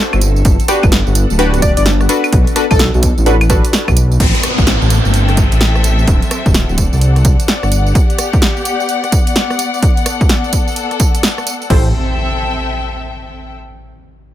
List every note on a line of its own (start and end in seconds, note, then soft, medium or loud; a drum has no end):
0.00 0.18 C4 medium
0.00 0.21 D4 medium
0.00 0.18 E4 medium
0.00 0.20 F#4 medium
0.00 0.21 F#4 medium
0.00 0.21 A4 medium
0.00 2.06 A4 medium
0.00 0.21 C5 medium
0.13 0.43 G1 medium
0.13 cross-stick medium
0.13 tambourine soft
0.13 claves medium
0.21 4.16 B3 medium
0.21 4.16 D4 medium
0.21 4.16 F#5 medium
0.21 closed hi-hat loud
0.21 tambourine medium
0.36 tambourine soft
0.45 0.58 G1 loud
0.45 kick loud
0.45 closed hi-hat medium
0.45 tambourine soft
0.60 closed hi-hat soft
0.60 tambourine soft
0.68 0.84 D4 medium
0.68 0.84 F#4 medium
0.68 0.84 G4 medium
0.68 0.84 B4 medium
0.68 cross-stick medium
0.68 closed hi-hat loud
0.68 tambourine medium
0.83 1.02 G1 medium
0.83 kick loud
0.83 tambourine soft
0.83 claves medium
0.92 snare loud
0.92 closed hi-hat medium
0.92 tambourine soft
1.07 1.25 G1 loud
1.07 tambourine soft
1.15 closed hi-hat loud
1.15 tambourine medium
1.30 1.73 D1 medium
1.30 tambourine soft
1.39 2.07 D4 medium
1.39 2.07 F#4 medium
1.39 2.07 G4 medium
1.39 2.07 B4 medium
1.39 closed hi-hat medium
1.39 tambourine soft
1.54 cross-stick soft
1.54 closed hi-hat soft
1.54 tambourine soft
1.62 1.72 D5 medium
1.62 kick loud
1.62 closed hi-hat loud
1.62 tambourine medium
1.77 2.07 G1 medium
1.77 1.83 D5 medium
1.77 closed hi-hat medium
1.77 tambourine soft
1.86 snare loud
1.86 closed hi-hat medium
1.86 tambourine soft
2.01 cross-stick medium
2.01 tambourine soft
2.09 2.54 D4 medium
2.09 2.54 F#4 medium
2.09 2.54 A4 medium
2.09 4.18 A4 loud
2.09 2.54 B4 medium
2.09 closed hi-hat loud
2.09 tambourine medium
2.24 tambourine soft
2.24 claves medium
2.33 2.45 B1 loud
2.33 kick loud
2.33 closed hi-hat medium
2.33 tambourine soft
2.47 closed hi-hat soft
2.47 tambourine soft
2.56 2.66 D4 medium
2.56 2.66 F#4 medium
2.56 2.66 A4 medium
2.56 2.66 B4 medium
2.56 cross-stick medium
2.56 closed hi-hat loud
2.56 tambourine medium
2.71 2.90 B1 medium
2.71 2.83 A4 medium
2.71 kick loud
2.71 tambourine soft
2.71 claves medium
2.79 snare loud
2.79 closed hi-hat medium
2.79 tambourine soft
2.94 3.13 B1 loud
2.94 tambourine soft
3.03 kick medium
3.03 closed hi-hat loud
3.03 tambourine medium
3.18 3.61 A1 medium
3.18 tambourine soft
3.26 3.36 D4 medium
3.26 3.36 F#4 medium
3.26 3.36 A4 medium
3.26 3.36 B4 loud
3.26 closed hi-hat medium
3.26 tambourine soft
3.41 cross-stick soft
3.41 closed hi-hat soft
3.41 tambourine soft
3.41 claves medium
3.50 4.19 D4 medium
3.50 4.19 F#4 medium
3.50 4.19 A4 medium
3.50 4.19 B4 medium
3.50 kick loud
3.50 closed hi-hat loud
3.50 tambourine medium
3.65 closed hi-hat medium
3.65 tambourine soft
3.73 snare loud
3.73 closed hi-hat medium
3.73 tambourine soft
3.88 4.18 B1 medium
3.88 kick medium
3.88 cross-stick medium
3.88 tambourine soft
3.88 claves medium
3.97 closed hi-hat loud
3.97 tambourine medium
4.12 tambourine soft
4.20 4.32 A1 loud
4.20 7.72 C4 medium
4.20 kick loud
4.20 closed hi-hat medium
4.20 crash loud
4.20 tambourine soft
4.20 downlifter medium
4.35 8.48 A4 medium
4.35 closed hi-hat soft
4.35 tambourine soft
4.43 cross-stick medium
4.43 closed hi-hat loud
4.43 tambourine medium
4.58 4.77 A1 medium
4.58 kick loud
4.58 tambourine soft
4.67 snare loud
4.67 closed hi-hat medium
4.67 tambourine soft
4.82 5.00 A1 loud
4.82 tambourine soft
4.87 6.74 E5 medium
4.87 closed hi-hat loud
4.87 tambourine medium
5.05 5.48 G1 medium
5.05 6.08 G5 medium
5.05 tambourine soft
5.14 closed hi-hat medium
5.14 tambourine soft
5.29 cross-stick soft
5.29 closed hi-hat soft
5.29 tambourine soft
5.37 kick loud
5.37 closed hi-hat loud
5.37 tambourine medium
5.52 6.05 A1 medium
5.52 closed hi-hat medium
5.52 tambourine soft
5.61 snare loud
5.61 closed hi-hat medium
5.61 tambourine soft
5.75 cross-stick medium
5.75 tambourine soft
5.84 closed hi-hat loud
5.84 tambourine medium
5.99 tambourine soft
6.08 6.20 D1 loud
6.08 kick loud
6.08 closed hi-hat medium
6.08 tambourine soft
6.22 closed hi-hat soft
6.22 tambourine soft
6.31 cross-stick medium
6.31 closed hi-hat loud
6.31 tambourine medium
6.46 6.65 D1 medium
6.46 kick loud
6.46 tambourine soft
6.54 snare loud
6.54 closed hi-hat medium
6.54 tambourine soft
6.59 11.70 F#5 medium
6.69 6.88 D1 loud
6.69 tambourine soft
6.78 11.70 D5 medium
6.78 kick medium
6.78 closed hi-hat loud
6.78 tambourine medium
6.93 7.36 C2 medium
6.93 tambourine soft
7.01 closed hi-hat medium
7.01 tambourine soft
7.16 cross-stick soft
7.16 closed hi-hat soft
7.16 tambourine soft
7.25 kick loud
7.25 closed hi-hat loud
7.25 tambourine medium
7.40 closed hi-hat medium
7.40 tambourine soft
7.48 snare loud
7.48 closed hi-hat medium
7.48 tambourine soft
7.63 7.93 G1 medium
7.63 cross-stick medium
7.63 tambourine soft
7.72 11.70 B3 medium
7.72 closed hi-hat loud
7.72 tambourine medium
7.87 9.59 G4 loud
7.87 tambourine soft
7.95 kick loud
7.95 closed hi-hat medium
7.95 tambourine soft
8.10 closed hi-hat soft
8.10 tambourine soft
8.19 cross-stick medium
8.19 closed hi-hat loud
8.19 tambourine medium
8.33 kick loud
8.33 tambourine soft
8.42 snare loud
8.42 closed hi-hat medium
8.42 tambourine soft
8.57 tambourine soft
8.65 closed hi-hat loud
8.65 tambourine medium
8.80 tambourine soft
8.89 closed hi-hat medium
8.89 tambourine soft
9.04 cross-stick soft
9.04 closed hi-hat soft
9.04 tambourine soft
9.12 kick loud
9.12 closed hi-hat loud
9.12 tambourine medium
9.27 closed hi-hat medium
9.27 tambourine soft
9.36 snare loud
9.36 closed hi-hat medium
9.36 tambourine soft
9.50 cross-stick medium
9.50 tambourine soft
9.59 closed hi-hat loud
9.59 tambourine medium
9.74 tambourine soft
9.83 kick loud
9.83 closed hi-hat medium
9.83 tambourine soft
9.97 11.70 A4 medium
9.97 closed hi-hat soft
9.97 tambourine soft
10.06 cross-stick medium
10.06 closed hi-hat loud
10.06 tambourine medium
10.21 kick loud
10.21 tambourine soft
10.29 snare loud
10.29 closed hi-hat medium
10.29 tambourine soft
10.44 tambourine soft
10.53 kick medium
10.53 closed hi-hat loud
10.53 tambourine medium
10.68 tambourine soft
10.76 closed hi-hat medium
10.76 tambourine soft
10.91 cross-stick soft
10.91 closed hi-hat soft
10.91 tambourine soft
11.00 kick loud
11.00 closed hi-hat loud
11.00 tambourine medium
11.15 closed hi-hat medium
11.15 tambourine soft
11.23 snare loud
11.23 closed hi-hat medium
11.23 tambourine soft
11.38 cross-stick medium
11.38 tambourine soft
11.47 closed hi-hat loud
11.47 tambourine medium
11.62 tambourine soft
11.70 11.92 A1 loud
11.70 13.53 C4 medium
11.70 11.89 E4 medium
11.70 11.89 G4 medium
11.70 11.89 A4 medium
11.70 11.89 C5 medium
11.70 kick loud
11.70 crash medium
11.70 impact medium
11.79 13.54 A4 medium
11.87 13.54 E5 medium
11.92 13.54 G5 medium